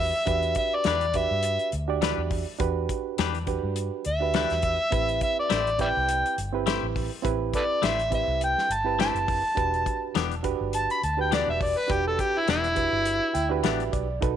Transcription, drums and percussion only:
0.27 kick medium
0.27 closed hi-hat medium
0.43 closed hi-hat soft
0.55 kick medium
0.55 closed hi-hat medium
0.84 snare loud
0.84 closed hi-hat medium
1.01 closed hi-hat soft
1.14 kick medium
1.14 closed hi-hat medium
1.43 closed hi-hat medium
1.59 closed hi-hat soft
1.72 closed hi-hat medium
2.02 snare medium
2.02 closed hi-hat medium
2.31 kick medium
2.31 open hi-hat medium
2.60 kick loud
2.60 closed hi-hat medium
2.89 kick medium
2.89 closed hi-hat medium
3.18 snare loud
3.18 closed hi-hat medium
3.35 closed hi-hat soft
3.47 kick medium
3.47 closed hi-hat soft
3.76 closed hi-hat medium
4.05 closed hi-hat medium
4.34 snare medium
4.34 closed hi-hat medium
4.50 snare soft
4.50 closed hi-hat soft
4.62 kick medium
4.62 closed hi-hat medium
4.92 kick loud
4.92 closed hi-hat medium
5.09 closed hi-hat soft
5.21 kick medium
5.21 closed hi-hat medium
5.50 snare medium
5.50 closed hi-hat medium
5.67 closed hi-hat soft
5.79 kick medium
5.79 closed hi-hat medium
6.09 closed hi-hat medium
6.26 closed hi-hat soft
6.38 closed hi-hat medium
6.67 snare medium
6.67 closed hi-hat medium
6.96 kick medium
6.96 open hi-hat medium
7.25 kick medium
7.25 closed hi-hat medium
7.53 kick medium
7.53 closed hi-hat medium
7.83 snare loud
7.83 closed hi-hat medium
7.99 closed hi-hat soft
8.12 kick medium
8.12 closed hi-hat medium
8.41 closed hi-hat medium
8.58 snare soft
8.71 closed hi-hat medium
9.00 snare loud
9.00 closed hi-hat medium
9.16 closed hi-hat soft
9.28 kick medium
9.28 open hi-hat medium
9.57 kick medium
9.57 closed hi-hat medium
9.74 closed hi-hat soft
9.86 kick medium
9.86 closed hi-hat medium
10.15 snare medium
10.15 closed hi-hat medium
10.32 closed hi-hat soft
10.44 kick medium
10.44 closed hi-hat medium
10.73 closed hi-hat medium
10.90 closed hi-hat soft
11.03 closed hi-hat medium
11.32 snare loud
11.32 closed hi-hat medium
11.61 kick medium
11.61 open hi-hat medium
11.90 kick loud
11.90 closed hi-hat medium
12.19 kick medium
12.19 closed hi-hat medium
12.48 snare medium
12.48 closed hi-hat medium
12.64 closed hi-hat soft
12.76 kick medium
12.76 closed hi-hat medium
13.05 closed hi-hat medium
13.35 closed hi-hat medium
13.64 snare medium
13.64 closed hi-hat medium
13.80 closed hi-hat soft
13.93 kick medium
13.93 closed hi-hat medium
14.22 kick loud
14.22 closed hi-hat medium

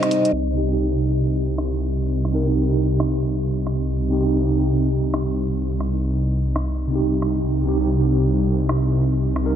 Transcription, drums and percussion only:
0.03 cross-stick medium
0.03 closed hi-hat soft
0.11 open hi-hat medium
0.25 closed hi-hat medium
1.58 cross-stick medium
2.25 cross-stick soft
3.00 cross-stick medium
3.67 cross-stick soft
5.14 cross-stick medium
5.80 cross-stick soft
6.56 cross-stick medium
7.22 cross-stick soft
8.69 cross-stick medium
9.36 cross-stick soft

